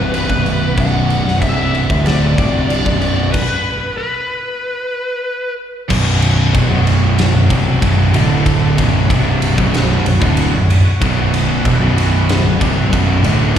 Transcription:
Already playing: fingered electric bass C1, distorted electric guitar C2 G2 C3, tonewheel organ B3 F#4 D5, lead electric guitar B4
0.14 lead electric guitar B4, crash
0.28 fingered electric bass B0, distorted electric guitar B1 F#2 B2, kick
0.46 crash
0.77 fingered electric bass B0, distorted electric guitar B1 F#2 B2, lead electric guitar F#5, kick, crash
1.10 crash
1.23 fingered electric bass B0, distorted electric guitar B1 F#2
1.28 snare
1.41 fingered electric bass C1, distorted electric guitar C2 G2 C3, lead electric guitar E5, kick, crash
1.75 crash
1.90 fingered electric bass D1, distorted electric guitar D2 A2 D3, kick
2.06 lead electric guitar D5, snare, crash
2.36 fingered electric bass C1, distorted electric guitar C2 G2 C3, kick, crash
2.70 crash
2.85 fingered electric bass B0, distorted electric guitar B1 F#2 B2, kick
3.01 crash
3.32 lead electric guitar B4, kick, crash
3.98 lead electric guitar B4
5.90 fingered electric bass B0, distorted electric guitar B1 F#2 B2, tonewheel organ B3 F#4 C#5, kick, crash
6.22 ride
6.54 fingered electric bass E1, distorted electric guitar E2 B2, kick, ride
6.69 fingered electric bass B0, distorted electric guitar B1 F#2 B2
6.87 ride
7.18 snare, ride
7.33 fingered electric bass B0, distorted electric guitar B1 F#2
7.49 fingered electric bass C1, distorted electric guitar C2 G2 C3, kick, ride
7.82 fingered electric bass B0, distorted electric guitar B1 F#2 B2, kick, ride
8.13 fingered electric bass D1, distorted electric guitar D2 A2 D3, tonewheel organ D3 A3 E4, ride
8.46 kick, ride
8.77 fingered electric bass B0, distorted electric guitar B1 F#2 B2, tonewheel organ B3 F#4 C#5, kick, ride
9.09 fingered electric bass C1, distorted electric guitar C2 G2 C3, kick, ride
9.42 ride
9.56 fingered electric bass B0, distorted electric guitar B1 F#2 B2, kick
9.74 snare, ride
10.04 fingered electric bass B0, distorted electric guitar B1 F#2, ride
10.19 fingered electric bass D1, distorted electric guitar D2 A2 D3, kick
10.37 ride
10.52 fingered electric bass B0, distorted electric guitar B1 F#2
10.70 ride
11.00 fingered electric bass B0, distorted electric guitar B1 F#2 B2, kick, ride
11.33 tonewheel organ B4, ride
11.64 fingered electric bass E1, distorted electric guitar E2 B2, kick, ride
11.80 fingered electric bass B0, distorted electric guitar B1 F#2 B2
11.98 ride
12.29 snare, ride
12.43 fingered electric bass B0, distorted electric guitar B1 F#2
12.58 fingered electric bass C1, distorted electric guitar C2 G2 C3, kick, ride
12.90 fingered electric bass B0, distorted electric guitar B1 F#2 B2, kick, ride
13.22 fingered electric bass D1, distorted electric guitar D2 A2 D3, ride
13.54 distorted electric guitar D2 A2 D3, tonewheel organ E4

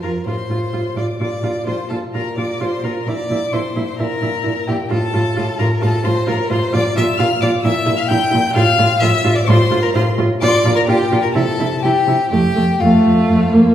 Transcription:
0.03 cello F2, viola F4, violin A#4 A#5
0.26 cello A2, viola F4, violin C5 C6
0.50 cello A2, viola F4
0.73 cello A2, viola F4
0.96 cello A2, viola F4, violin D5 D6
1.19 cello A#2, viola F4, violin D5 D6
1.43 cello A#2, viola F4
1.66 cello A#2, viola F4, violin C5 C6
1.89 cello A#2, viola F4, violin A4 A5
2.13 cello A#2, viola F4, violin A#4 A#5
2.37 cello A#2, viola F4, violin D5 D6
2.60 cello A#2, viola F4, violin C5 C6
2.84 cello A#2, viola F4, violin A#4 A#5
3.06 cello A#2, viola E4, violin D5 D6
3.30 cello A#2, viola E4
3.52 cello A#2, viola E4, violin C5 C6
3.76 cello A#2, viola E4
3.99 cello A#2, viola E4, violin A#4 A#5
4.22 cello A#2, viola E4
4.43 cello A#2, viola E4
4.67 cello A#2, viola E4, violin G4 G5
4.90 cello A2, viola F4, violin A4 A5
5.14 cello A2, viola F4
5.36 cello A2, viola F4
5.59 cello A2, viola F4, violin A#4 A#5
5.81 cello A2, viola F4, violin A4 A5
6.04 cello A2, viola F4, violin C5 C6
6.27 cello A2, viola F4, violin A#4 A#5
6.50 cello A2, viola F4, violin C5 C6
6.73 cello A#2, viola F4, violin D5 D6
6.96 cello A#2, viola F4, violin E5 E6
7.17 cello A#2, viola F4, violin F5 F6
7.41 cello A#2, viola F4, violin D5 D6
7.63 cello A#2, viola E4, violin E5 E6
7.86 cello A#2, viola E4
7.97 violin F5 F6
8.08 cello A#2, viola E4, violin G5 G6
8.31 cello A#2, viola E4
8.47 violin G6
8.54 cello A2, viola F4, violin F5 F6
8.79 cello A2, viola F4
9.00 cello A2, viola F4, violin E5 E6
9.24 cello A2, viola F4
9.36 violin D5 D6
9.46 cello A2, viola F4, violin C5 C6
9.71 cello A2, viola F4
9.83 violin A#4 A#5
9.93 cello A2, viola F4, violin C5 C6
10.18 cello A2, viola F4
10.40 cello A#2, viola F4, violin D5 D6
10.48 violin C6
10.55 violin D6
10.65 cello A#2, viola F4
10.76 violin A#4 A#5
10.87 cello A#2, viola F4, violin G4 G5
11.12 cello A#2, viola F4
11.22 violin A#4 A#5
11.34 cello C3, viola E4, violin A4 A5
11.60 cello C3, viola E4
11.83 cello C3, viola E4, violin G4 G5
12.07 cello C3, viola E4
12.31 cello F2, viola A3, violin G4 G5
12.56 cello F2, viola A3
12.80 cello F2, viola A3, violin F4 F5
13.06 cello F2
13.29 cello F2
13.53 cello F2, viola A#3

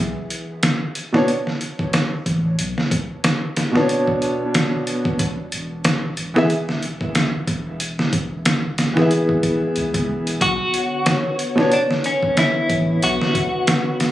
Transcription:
0.00 sub bass B1
0.30 closed hi-hat
0.63 snare, closed hi-hat
0.95 closed hi-hat
1.12 felt piano B2 B3 D4, snare
1.17 felt piano C#5
1.28 closed hi-hat
1.47 snare
1.61 closed hi-hat
1.79 kick
1.93 snare, closed hi-hat
2.26 sub bass A1, kick, closed hi-hat
2.59 sub bass B1, closed hi-hat
2.78 snare
2.91 kick, closed hi-hat
3.24 snare, closed hi-hat
3.56 snare, closed hi-hat
3.71 felt piano B2 B3
3.76 felt piano D4, snare
3.80 felt piano C#5
3.89 closed hi-hat
4.08 kick
4.22 closed hi-hat
4.54 snare, closed hi-hat
4.87 closed hi-hat
5.05 kick
5.19 sub bass E1, kick, closed hi-hat
5.52 sub bass E1, closed hi-hat
5.84 snare, closed hi-hat
6.17 sub bass E1, closed hi-hat
6.34 felt piano E3 B3 G#4, snare
6.38 felt piano E5
6.50 closed hi-hat
6.69 snare
6.83 closed hi-hat
7.01 kick
7.15 snare, closed hi-hat
7.47 kick, closed hi-hat
7.80 closed hi-hat
7.99 snare
8.13 kick, closed hi-hat
8.45 snare, closed hi-hat
8.78 snare, closed hi-hat
8.93 felt piano E3 B3, snare
8.99 felt piano G#4 E5
9.11 closed hi-hat
9.29 kick
9.43 kick, closed hi-hat
9.76 sub bass C#2, closed hi-hat
9.94 kick, closed hi-hat
10.10 sub bass E1
10.27 closed hi-hat
10.41 sub bass B1, ambient pad D3 B3 C#5, clean electric guitar F#4, kick, closed hi-hat
10.74 closed hi-hat
11.06 snare, closed hi-hat
11.39 closed hi-hat
11.55 felt piano B2 B3 D4, snare
11.60 felt piano C#5
11.72 clean electric guitar D4, closed hi-hat
11.91 snare
12.04 clean electric guitar C#4, closed hi-hat
12.23 kick
12.37 clean electric guitar E4, snare, closed hi-hat
12.70 sub bass A1, kick, closed hi-hat
13.03 sub bass B1, ambient pad F#4, clean electric guitar F#4, closed hi-hat
13.22 snare
13.35 kick, closed hi-hat
13.67 snare, closed hi-hat
14.00 snare, closed hi-hat

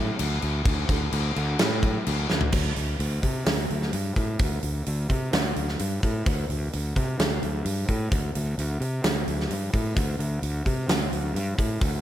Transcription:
0.19 fingered electric bass D2, crash
0.42 fingered electric bass D2, crash
0.65 fingered electric bass D2, kick, crash
0.89 fingered electric bass D2, kick, crash
1.12 fingered electric bass D2, crash
1.36 fingered electric bass D2, crash
1.59 fingered electric bass A2, snare, crash
1.83 kick, crash
2.07 fingered electric bass D2, crash
2.30 fingered electric bass D2, snare
2.41 floor tom
2.52 fingered electric bass D2, kick, crash
2.76 fingered electric bass D2, open hi-hat
2.99 fingered electric bass D2, open hi-hat
3.23 fingered electric bass C3, kick, open hi-hat
3.46 fingered electric bass D2, snare, open hi-hat
3.70 fingered electric bass D2, open hi-hat
3.82 snare
3.93 fingered electric bass G2, open hi-hat
4.16 fingered electric bass A2, kick, open hi-hat
4.39 fingered electric bass D2, kick, open hi-hat
4.63 fingered electric bass D2, open hi-hat
4.86 fingered electric bass D2, open hi-hat
5.10 fingered electric bass C3, kick, open hi-hat
5.33 fingered electric bass D2, snare, open hi-hat
5.56 fingered electric bass D2, open hi-hat
5.68 snare
5.79 fingered electric bass G2, open hi-hat
6.03 fingered electric bass A2, kick, open hi-hat
6.26 fingered electric bass D2, kick, open hi-hat
6.49 fingered electric bass D2, open hi-hat
6.73 fingered electric bass D2, open hi-hat
6.96 fingered electric bass C3, kick, open hi-hat
7.19 fingered electric bass D2, snare, open hi-hat
7.42 fingered electric bass D2, open hi-hat
7.65 fingered electric bass G2, open hi-hat
7.89 fingered electric bass A2, kick, open hi-hat
8.12 fingered electric bass D2, kick, open hi-hat
8.35 fingered electric bass D2, open hi-hat
8.58 fingered electric bass D2, open hi-hat
8.80 fingered electric bass C3, open hi-hat
9.04 fingered electric bass D2, snare, open hi-hat
9.27 fingered electric bass D2, open hi-hat
9.40 snare
9.50 fingered electric bass G2, open hi-hat
9.73 fingered electric bass A2, kick, open hi-hat
9.96 fingered electric bass D2, kick, open hi-hat
10.19 fingered electric bass D2, open hi-hat
10.42 fingered electric bass D2, open hi-hat
10.66 fingered electric bass C3, kick, open hi-hat
10.88 fingered electric bass D2, snare, open hi-hat
11.12 fingered electric bass D2, open hi-hat
11.34 fingered electric bass G2, open hi-hat
11.58 fingered electric bass A2, kick, open hi-hat
11.81 fingered electric bass D2, kick, open hi-hat

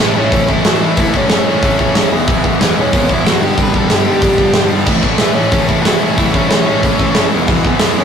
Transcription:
0.00 picked electric bass A1, overdriven electric guitar A2 E3 A3 C#4 E4, lead electric guitar B3 B4
0.15 picked electric bass A1, overdriven electric guitar A2 E3 A3 C#4 E4, lead electric guitar C#4 C#5
0.31 picked electric bass A1, overdriven electric guitar A2 E3 A3 C#4 E4, kick, open hi-hat
0.48 picked electric bass A1, overdriven electric guitar A2 E3 A3 C#4 E4, lead electric guitar E4 E5, kick
0.64 picked electric bass A1, overdriven electric guitar A2 E3 A3 C#4 E4, lead electric guitar F#4 F#5, snare, open hi-hat
0.81 picked electric bass A1, overdriven electric guitar A2 E3 A3 C#4 E4, lead electric guitar E4 E5
0.97 picked electric bass A1, overdriven electric guitar A2 E3 A3 C#4 E4, lead electric guitar E4 E5, kick, open hi-hat
1.13 picked electric bass G2, overdriven electric guitar A2 E3 A3 C#4 E4, lead electric guitar C#5, kick
1.17 lead electric guitar C#4
1.29 picked electric bass A1, overdriven electric guitar A2 E3 A3 C#4, lead electric guitar C#4 C#5, snare, open hi-hat
1.33 overdriven electric guitar E4
1.46 overdriven electric guitar A2 E3 A3 C#4 E4
1.63 picked electric bass A1, overdriven electric guitar A2 E3 A3 C#4 E4, kick, open hi-hat
1.79 picked electric bass A1, overdriven electric guitar A2 E3 A3 C#4 E4, kick
1.94 picked electric bass A1, overdriven electric guitar A2 E3 A3 C#4 E4, snare, open hi-hat
2.11 picked electric bass E1, distorted electric guitar E2 B2, overdriven electric guitar E3 G#3 B3 E4
2.27 picked electric bass E1, distorted electric guitar E2 B2, overdriven electric guitar E3 G#3 B3 E4, kick, open hi-hat
2.43 distorted electric guitar E2 B2, overdriven electric guitar E3 G#3 B3 E4, kick
2.60 picked electric bass E1, distorted electric guitar E2 B2, overdriven electric guitar E3 G#3 B3 E4, lead electric guitar B3 B4, snare, open hi-hat
2.76 picked electric bass E1, distorted electric guitar E2 B2, overdriven electric guitar E3 G#3 B3 E4, lead electric guitar C#4
2.81 lead electric guitar C#5
2.93 picked electric bass E1, distorted electric guitar E2 B2, overdriven electric guitar E3 G#3 B3 E4, kick, open hi-hat
3.09 picked electric bass E1, distorted electric guitar E2 B2, overdriven electric guitar E3 G#3 B3 E4, kick
3.13 lead electric guitar E4 E5
3.26 picked electric bass F#1, distorted electric guitar E2 B2, overdriven electric guitar E3 G#3 B3 E4, lead electric guitar F#4 F#5, snare, open hi-hat
3.41 picked electric bass G1, overdriven electric guitar G2 D3 G3 B3 D4, lead electric guitar G4 G5
3.57 picked electric bass G1, overdriven electric guitar G2 D3 G3 B3 D4, kick, open hi-hat
3.61 lead electric guitar B4 B5
3.73 picked electric bass E2, overdriven electric guitar G2 D3 G3 B3 D4, lead electric guitar A4, kick
3.78 lead electric guitar A5
3.89 picked electric bass G1, overdriven electric guitar G2 D3 G3 B3 D4, snare, open hi-hat
3.94 lead electric guitar G4 G5
4.06 overdriven electric guitar G2 D3 G3 B3 D4
4.22 picked electric bass G1, overdriven electric guitar G2 D3 G3 B3 D4, kick, open hi-hat
4.38 picked electric bass G1, overdriven electric guitar G2 D3 G3 B3 D4, kick
4.54 picked electric bass G1, overdriven electric guitar G3 B3 D4, snare, open hi-hat
4.58 overdriven electric guitar G2 D3
4.71 picked electric bass G1, overdriven electric guitar G2 D3 G3 B3 D4
4.86 picked electric bass A1, overdriven electric guitar A2 E3 A3 C#4 E4, kick, crash
5.03 overdriven electric guitar A2 E3 A3 C#4 E4, kick
5.18 picked electric bass A1, overdriven electric guitar A2 E3, lead electric guitar B3 B4, snare, open hi-hat
5.22 overdriven electric guitar A3 C#4 E4
5.34 picked electric bass A1, overdriven electric guitar A3 C#4 E4, lead electric guitar C#4 C#5
5.39 overdriven electric guitar A2 E3
5.52 picked electric bass A1, overdriven electric guitar A2 E3 A3 C#4 E4, kick, open hi-hat
5.66 picked electric bass A1, overdriven electric guitar A2 E3 A3 C#4 E4, lead electric guitar E4 E5, kick
5.82 picked electric bass A1, overdriven electric guitar A2 E3 A3 C#4 E4, lead electric guitar F#5, snare, open hi-hat
5.88 lead electric guitar F#4
5.97 overdriven electric guitar A2 E3 C#4 E4, lead electric guitar E4 E5
6.02 picked electric bass A1, overdriven electric guitar A3
6.15 picked electric bass A1, overdriven electric guitar A2 E3 A3 C#4 E4, lead electric guitar E4 E5, kick, open hi-hat
6.32 picked electric bass G2, overdriven electric guitar A2 E3 A3 C#4 E4, lead electric guitar C#5, kick
6.36 lead electric guitar C#4
6.48 picked electric bass A1, overdriven electric guitar A2 E3 A3 C#4 E4, lead electric guitar C#5, snare, open hi-hat
6.53 lead electric guitar C#4
6.66 overdriven electric guitar A2 E3 A3 C#4 E4
6.82 picked electric bass A1, overdriven electric guitar A2 E3 A3 C#4 E4, kick, open hi-hat
6.99 picked electric bass A1, overdriven electric guitar A2 E3 A3 C#4 E4, kick
7.14 picked electric bass F#1, overdriven electric guitar A2 E3 A3 C#4 E4, snare, open hi-hat
7.30 picked electric bass E1, distorted electric guitar E2 B2, overdriven electric guitar E3 G#3 B3 E4
7.47 picked electric bass E1, distorted electric guitar E2 B2, overdriven electric guitar E3 G#3 B3 E4, kick, open hi-hat
7.64 distorted electric guitar E2 B2, overdriven electric guitar E3 G#3 B3 E4, kick
7.79 picked electric bass E1, distorted electric guitar E2 B2, overdriven electric guitar E3 G#3 B3 E4, snare, open hi-hat
7.83 lead electric guitar B3 B4
7.97 picked electric bass E1, distorted electric guitar E2 B2, overdriven electric guitar E3 G#3 B3 E4, lead electric guitar C#4 C#5

